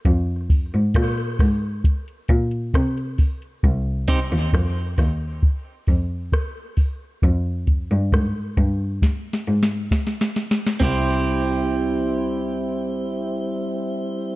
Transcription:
<<
  \new Staff \with { instrumentName = "Clean electric guitar" } { \time 4/4 \key f \dorian \tempo 4 = 67 r1 | r8 <c' ees' g' c''>8 r2. | r1 | <c' e' g' c''>1 | }
  \new Staff \with { instrumentName = "Tonewheel organ" } { \time 4/4 \key f \dorian r1 | r1 | r1 | <g c' e'>1 | }
  \new Staff \with { instrumentName = "Cello" } { \clef bass \time 4/4 \key f \dorian f,8. aes,16 bes,8 aes,8 r8 bes,8 c8 r8 | c,8. ees,16 f,8 ees,8 r8 f,8 r4 | f,8. g,16 aes,8 g,8 r8 aes,8 r4 | c,1 | }
  \new DrumStaff \with { instrumentName = "Drums" } \drummode { \time 4/4 <hh bd>8 <hho bd>8 <hh bd ss>16 hh16 <hho bd ss>8 <hh bd>16 hh16 <hh bd>16 hh16 <hh bd ss>16 hh16 <hho bd>16 hh16 | bd8 <hho bd>8 <bd ss>8 <hho bd ss>8 bd8 <hho bd>8 <bd ss>8 <hho bd>8 | bd8 <hh bd>8 <bd ss>8 <hh bd>8 \tuplet 3/2 { <bd sn>16 r16 sn16 hh16 sn16 r16 <bd sn>16 sn16 sn16 <hh sn>16 sn16 sn16 } | <cymc bd>4 r4 r4 r4 | }
>>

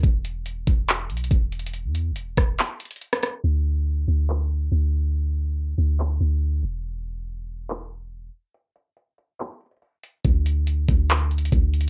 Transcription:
<<
  \new Staff \with { instrumentName = "808-style bass" } { \clef bass \time 4/4 \key e \dorian \tempo 4 = 141 e,,4. e,,4 b,,8 e,,4~ | e,,16 e,8~ e,32 e,,8~ e,,32 e,,8 r2 | d,4. d,4. d,4~ | d,4. d,4 d,4 e,,8~ |
e,,2.~ e,,8 r8 | r1 | d,4. d,4. d,4 | }
  \new DrumStaff \with { instrumentName = "Drums" } \drummode { \time 4/4 <hh bd>8 hh8 hh8 <hh bd>8 \tuplet 3/2 { <hc hh>16 r16 r16 hh16 hh16 hh16 <hh bd>16 r16 r16 hh16 hh16 hh16 } | hh8 hh8 hh8 <hh bd ss>8 <hc hh>8 hh32 hh32 hh32 hh32 hh16 ss16 <hh ss>8 | r4 r4 hc4 r4 | r4 r4 hc4 r4 |
r4 r4 hc4 r4 | hh8 hh8 hh8 hh8 <hc hh>8 hh32 hh32 hh32 hh32 hh8 hh8 | <hh bd>8 hh8 hh8 <hh bd>8 \tuplet 3/2 { <hc hh>16 r16 r16 hh16 hh16 hh16 <hh bd>16 r16 r16 hh16 hh16 r16 } | }
>>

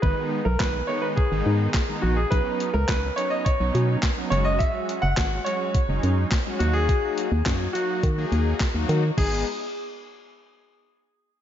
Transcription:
<<
  \new Staff \with { instrumentName = "Grand piano" } { \time 4/4 \key gis \minor \tempo 4 = 105 b'8. ais'16 b'8 cis''16 b'16 gis'4. fis'16 gis'16 | b'8. ais'16 b'8 cis''16 dis''16 cis''4. cis''16 dis''16 | e''8. fis''8. cis''4. r8 fis'16 gis'16~ | gis'4. fis'4. r4 |
gis'8 r2. r8 | }
  \new Staff \with { instrumentName = "Analog polysynth" } { \time 4/4 \key gis \minor <dis gis b dis'>8. r16 <dis gis b dis'>16 r16 <dis gis b dis'>8 r16 <dis gis b dis'>8. r16 <dis gis b dis'>8 r16 | <fis b cis' dis'>8. r16 <fis b cis' dis'>16 r16 <fis b cis' dis'>8 r16 <fis b cis' dis'>8. r16 <fis b cis' dis'>16 <fis gis cis' fis'>8~ | <fis gis cis' fis'>8. r16 <fis gis cis' fis'>16 r16 <fis gis cis' fis'>8 r16 <fis gis cis' dis'>8. r16 <fis gis cis' fis'>16 <fis ais dis' fis'>8~ | <fis ais dis' fis'>8. r16 <fis ais dis' fis'>16 r16 <fis ais dis' fis'>8 r16 <fis ais dis' gis'>8. r16 <fis ais dis' fis'>8 r16 |
<gis b dis' gis'>8 r2. r8 | }
  \new Staff \with { instrumentName = "FM bass" } { \clef bass \time 4/4 \key gis \minor gis,,16 r8 b,,16 b,,8 r8. gis,,16 gis,8 r8 ais,,8 | b,,16 r8 cis,16 cis,8 r8. b,,16 b,8 r8 fis,,8~ | fis,,16 r8 fis,,16 gis,,8 r8. fis,,16 fis,8 r8 dis,8~ | dis,16 r8 dis,16 fis,8 r8 dis8 dis,8 dis,16 dis,16 dis8 |
gis,,8 r2. r8 | }
  \new DrumStaff \with { instrumentName = "Drums" } \drummode { \time 4/4 bd4 <hc bd sn>4 bd4 <hc bd sn>4 | <hh bd>8 hh8 <hc hh bd sn>8 hh8 <hh bd>8 hh8 <hc hh bd sn>8 hh8 | <hh bd>8 hh8 <hc hh bd sn>8 hh8 <hh bd>8 hh8 <hc hh bd sn>8 hh8 | <hh bd>8 hh8 <hc hh bd sn>8 hh8 <hh bd>8 hh8 <hc hh bd sn>8 hh8 |
<cymc bd>4 r4 r4 r4 | }
>>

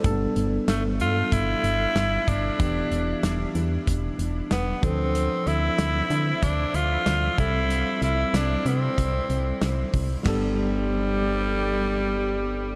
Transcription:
<<
  \new Staff \with { instrumentName = "Tenor saxophone" } { \time 4/4 \key g \mixolydian \tempo 4 = 94 r4 a8 f'8 e'4. d'8~ | d'4. r4. b8 c'8~ | c'8 e'4. d'8 f'4 e'8~ | e'8 e'8 d'8 c'2 r8 |
g1 | }
  \new Staff \with { instrumentName = "Tine electric piano" } { \time 4/4 \key g \mixolydian <g a b d' a'>1 | <e b d' g'>2.~ <e b d' g'>8 <f c' d' a'>8~ | <f c' d' a'>2.~ <f c' d' a'>8 <g c' e' a'>8~ | <g c' e' a'>2.~ <g c' e' a'>8 r8 |
<g b d' a'>1 | }
  \new Staff \with { instrumentName = "FM bass" } { \clef bass \time 4/4 \key g \mixolydian g,,8 g,,8 g,,8 g,8 g,,8 g,,8 g,,8 g,,8 | e,,8 e,,8 e,,8 e,8 e,,8 e,,8 e,,8 d,8~ | d,8 d,8 d,8 d8 d,8 d,8 d,8 c,8~ | c,8 c,8 c,8 c8 c,8 c,8 c,8 c,8 |
g,,1 | }
  \new DrumStaff \with { instrumentName = "Drums" } \drummode { \time 4/4 <hh bd>8 hh8 <hh sn>8 hh8 <hh bd>8 hh8 <hh sn>8 <hh bd>8 | <hh bd>8 hh8 <hh sn>8 hh8 <hh bd>8 hh8 <hh sn>8 <hh bd>8 | hh8 hh8 <hh sn>8 hh8 <hh bd>8 hh8 <hh sn>8 <hh bd>8 | hh8 hh8 <hh sn>8 hh8 <hh bd>8 hh8 <hh sn>8 <hho bd>8 |
<cymc bd sn>4 r4 r4 r4 | }
>>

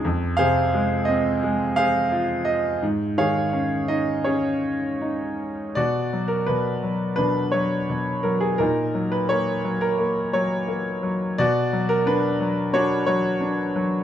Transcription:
<<
  \new Staff \with { instrumentName = "Grand piano" } { \time 4/4 \key aes \mixolydian \tempo 4 = 86 << { r8 f''4 ees''8 r8 f''4 ees''8 | r8 f''4 ees''8 des''4. r8 | \key b \lydian d''8. ais'16 b'4 b'8 cis''4 ais'16 gis'16 | ais'8. b'16 cis''8. ais'8. cis''4 r8 |
d''8. ais'16 b'4 cis''8 cis''4 r8 | } \\ { r8 <aes' c''>2 <aes' c''>4. | r8 <aes' des''>4. aes'2 | fis'2 d'2 | dis'2 r2 |
fis'2 fis'2 | } >> }
  \new Staff \with { instrumentName = "Grand piano" } { \clef bass \time 4/4 \key aes \mixolydian f,8 c8 aes8 c'8 aes4 f'4 | aes,8 ees8 des'8 ees'8 des'4 ees'4 | \key b \lydian b,8 fis8 b,8 fis8 b,8 fis8 b,8 fis8 | ais,8 fis8 ais8 fis8 ais8 fis8 ais8 fis8 |
b,8 fis8 d'8 fis8 d'8 fis8 d'8 fis8 | }
>>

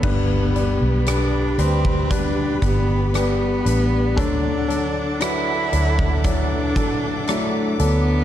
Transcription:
<<
  \new Staff \with { instrumentName = "String section" } { \time 4/4 \key g \major \tempo 4 = 58 <g' b' d'' b''>1 | <a' fis'' d'''>1 | }
  \new Staff \with { instrumentName = "Grand piano" } { \time 4/4 \key g \major <g d' b'>8 <g d' d''>8 <g d' b'>8 <g d' b'>8 <g d' b'>8 <g d' g'>8 <g d' b'>8 <g d' b'>8 | <fis d' a'>8 <fis d' a'>8 <fis d' b'>8 <fis d' a'>8 <fis d' e'>8 <fis d' a'>8 <fis d' e'>8 <fis d' a'>8 | }
  \new Staff \with { instrumentName = "Grand piano" } { \clef bass \time 4/4 \key g \major g,4. r2 r8 | d4. r2 r8 | }
  \new Staff \with { instrumentName = "Steel-string acoustic guitar" } { \time 4/4 \key g \major g,8 b8 d'8 g'8 b8 d'8 <b d' g'>4 | d8 d'8 fis'8 a'8 d'8 fis'8 <d' fis' a'>4 | }
  \new Staff \with { instrumentName = "Cello" } { \time 4/4 \key g \major b4 d'8 c'8 d'8 b8 b4 | d'4 e'4 d'4 a8 b8 | }
  \new Staff \with { instrumentName = "Fingered electric bass" } { \clef bass \time 4/4 \key g \major g,,8. b,,8. d,4 g,,4 a,,8 | d,4. d,4 a,,4 d,8 | }
  \new DrumStaff \with { instrumentName = "Drums" } \drummode { \time 4/4 <cymc bd>8 hh8 <hh ss>8 hh16 bd16 <hh bd>8 <hh bd>8 <hh ss>8 hh8 | <hh bd>8 hh8 <hh ss>8 hh16 bd16 <hh bd>8 <hh bd>8 <hh ss>8 hh8 | }
>>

